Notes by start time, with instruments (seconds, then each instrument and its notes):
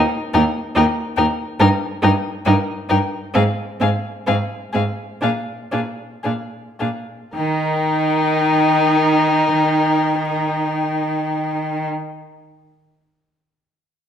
0.34 cello D#2, viola D#4, violin A#4 G5
0.75 cello D#2, viola D#4, violin A#4 G5
1.16 cello D#2, viola D#4, violin A#4 G5
1.60 cello G2, viola D#4, violin A#4 G5
2.02 cello G2, viola D#4, violin A#4 G5
2.45 cello G2, viola D#4, violin A#4 G5
2.89 cello G2, viola D#4, violin A#4 G5
3.34 cello G#2, viola C4, violin G#4 F5
3.80 cello G#2, viola C4, violin G#4 F5
4.27 cello G#2, viola C4, violin G#4 F5
4.73 cello G#2, viola C4, violin G#4 F5
5.21 cello A#2, viola D4, violin G#4 F5
5.72 cello A#2, viola D4, violin G#4 F5
6.23 cello A#2, viola D4, violin G#4 F5
6.79 cello A#2, viola D4, violin G#4 F5
7.33 cello D#3, viola D#4, violin A#4 G5